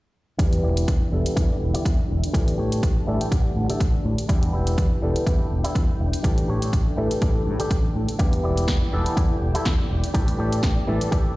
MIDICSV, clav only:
0, 0, Header, 1, 2, 480
1, 0, Start_track
1, 0, Tempo, 487805
1, 386, Time_signature, 4, 2, 24, 8
1, 11181, End_track
2, 0, Start_track
2, 0, Title_t, "Clav"
2, 0, Program_c, 0, 7
2, 379, Note_on_c, 0, 52, 71
2, 385, Note_on_c, 0, 55, 63
2, 388, Note_on_c, 0, 59, 64
2, 391, Note_on_c, 0, 62, 67
2, 396, Note_on_c, 0, 67, 76
2, 1077, Note_off_c, 0, 52, 0
2, 1080, Note_off_c, 0, 55, 0
2, 1081, Note_off_c, 0, 59, 0
2, 1083, Note_off_c, 0, 62, 0
2, 1085, Note_off_c, 0, 67, 0
2, 1098, Note_on_c, 0, 52, 72
2, 1100, Note_on_c, 0, 55, 67
2, 1105, Note_on_c, 0, 59, 67
2, 1110, Note_on_c, 0, 62, 67
2, 1112, Note_on_c, 0, 69, 82
2, 2276, Note_off_c, 0, 52, 0
2, 2277, Note_off_c, 0, 55, 0
2, 2279, Note_off_c, 0, 59, 0
2, 2282, Note_off_c, 0, 62, 0
2, 2283, Note_off_c, 0, 69, 0
2, 2299, Note_on_c, 0, 52, 72
2, 2304, Note_on_c, 0, 55, 66
2, 2308, Note_on_c, 0, 57, 65
2, 2311, Note_on_c, 0, 62, 68
2, 2316, Note_on_c, 0, 67, 78
2, 2997, Note_off_c, 0, 52, 0
2, 2999, Note_off_c, 0, 55, 0
2, 3001, Note_off_c, 0, 57, 0
2, 3003, Note_off_c, 0, 62, 0
2, 3005, Note_off_c, 0, 67, 0
2, 3019, Note_on_c, 0, 52, 72
2, 3023, Note_on_c, 0, 55, 66
2, 3026, Note_on_c, 0, 57, 68
2, 3031, Note_on_c, 0, 62, 67
2, 3034, Note_on_c, 0, 69, 83
2, 4196, Note_off_c, 0, 52, 0
2, 4198, Note_off_c, 0, 55, 0
2, 4200, Note_off_c, 0, 57, 0
2, 4203, Note_off_c, 0, 62, 0
2, 4204, Note_off_c, 0, 69, 0
2, 4218, Note_on_c, 0, 52, 73
2, 4224, Note_on_c, 0, 55, 65
2, 4227, Note_on_c, 0, 59, 66
2, 4231, Note_on_c, 0, 62, 67
2, 4234, Note_on_c, 0, 67, 80
2, 4916, Note_off_c, 0, 52, 0
2, 4919, Note_off_c, 0, 55, 0
2, 4921, Note_off_c, 0, 59, 0
2, 4923, Note_off_c, 0, 62, 0
2, 4924, Note_off_c, 0, 67, 0
2, 4938, Note_on_c, 0, 52, 72
2, 4944, Note_on_c, 0, 55, 67
2, 4946, Note_on_c, 0, 59, 67
2, 4950, Note_on_c, 0, 62, 68
2, 4954, Note_on_c, 0, 69, 81
2, 6116, Note_off_c, 0, 52, 0
2, 6119, Note_off_c, 0, 55, 0
2, 6120, Note_off_c, 0, 59, 0
2, 6122, Note_off_c, 0, 62, 0
2, 6124, Note_off_c, 0, 69, 0
2, 6137, Note_on_c, 0, 52, 74
2, 6140, Note_on_c, 0, 55, 69
2, 6144, Note_on_c, 0, 57, 66
2, 6148, Note_on_c, 0, 62, 64
2, 6153, Note_on_c, 0, 67, 84
2, 6835, Note_off_c, 0, 52, 0
2, 6837, Note_off_c, 0, 55, 0
2, 6839, Note_off_c, 0, 57, 0
2, 6841, Note_off_c, 0, 62, 0
2, 6844, Note_off_c, 0, 67, 0
2, 6857, Note_on_c, 0, 52, 71
2, 6862, Note_on_c, 0, 55, 68
2, 6867, Note_on_c, 0, 57, 65
2, 6870, Note_on_c, 0, 62, 68
2, 6874, Note_on_c, 0, 69, 81
2, 8036, Note_off_c, 0, 52, 0
2, 8038, Note_off_c, 0, 55, 0
2, 8040, Note_off_c, 0, 57, 0
2, 8042, Note_off_c, 0, 62, 0
2, 8044, Note_off_c, 0, 69, 0
2, 8057, Note_on_c, 0, 52, 71
2, 8062, Note_on_c, 0, 55, 68
2, 8064, Note_on_c, 0, 59, 64
2, 8071, Note_on_c, 0, 62, 66
2, 8073, Note_on_c, 0, 67, 81
2, 8756, Note_off_c, 0, 52, 0
2, 8758, Note_off_c, 0, 55, 0
2, 8759, Note_off_c, 0, 59, 0
2, 8763, Note_off_c, 0, 62, 0
2, 8764, Note_off_c, 0, 67, 0
2, 8778, Note_on_c, 0, 52, 75
2, 8783, Note_on_c, 0, 55, 67
2, 8787, Note_on_c, 0, 59, 67
2, 8791, Note_on_c, 0, 62, 67
2, 8794, Note_on_c, 0, 69, 82
2, 9956, Note_off_c, 0, 52, 0
2, 9959, Note_off_c, 0, 55, 0
2, 9961, Note_off_c, 0, 59, 0
2, 9962, Note_off_c, 0, 62, 0
2, 9964, Note_off_c, 0, 69, 0
2, 9975, Note_on_c, 0, 52, 73
2, 9979, Note_on_c, 0, 55, 69
2, 9984, Note_on_c, 0, 57, 67
2, 9987, Note_on_c, 0, 62, 66
2, 9992, Note_on_c, 0, 67, 78
2, 10675, Note_off_c, 0, 52, 0
2, 10677, Note_off_c, 0, 55, 0
2, 10679, Note_off_c, 0, 57, 0
2, 10681, Note_off_c, 0, 62, 0
2, 10683, Note_off_c, 0, 67, 0
2, 10699, Note_on_c, 0, 52, 75
2, 10703, Note_on_c, 0, 55, 68
2, 10706, Note_on_c, 0, 57, 69
2, 10710, Note_on_c, 0, 62, 68
2, 10714, Note_on_c, 0, 69, 84
2, 11181, Note_off_c, 0, 52, 0
2, 11181, Note_off_c, 0, 55, 0
2, 11181, Note_off_c, 0, 57, 0
2, 11181, Note_off_c, 0, 62, 0
2, 11181, Note_off_c, 0, 69, 0
2, 11181, End_track
0, 0, End_of_file